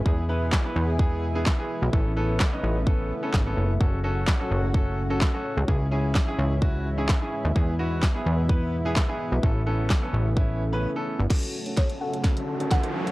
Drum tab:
CC |----------------|----------------|----------------|----------------|
HH |----------------|----------------|----------------|----------------|
CP |----x-------x---|----x-------x---|----x-------x---|----x-------x---|
SD |----o-------o---|----o-------o---|----o-------o---|----o-------o---|
BD |o---o---o---o---|o---o---o---o---|o---o---o---o---|o---o---o---o---|

CC |----------------|----------------|x---------------|
HH |----------------|----------------|xx-xxx-xxx-xxx-x|
CP |----x-------x---|----x-----------|----------------|
SD |----o-------o---|----o-----------|o---o---o---o---|
BD |o---o---o---o---|o---o---o-------|o---o---o---o---|